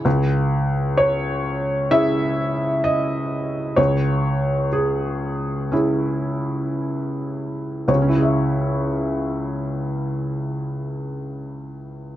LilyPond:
\new Staff \with { instrumentName = "Felt piano" } { \time 4/4 \key cis \minor \tempo 4 = 59 << { r4 cis''4 e''4 dis''4 | cis''4 gis'2~ gis'8 r8 | <cis, cis cis' e' gis' cis'' e''>1 | } \\ { cis,2 <cis' e' gis'>2 | cis,2 <cis' e' gis'>2 | r1 | } >> }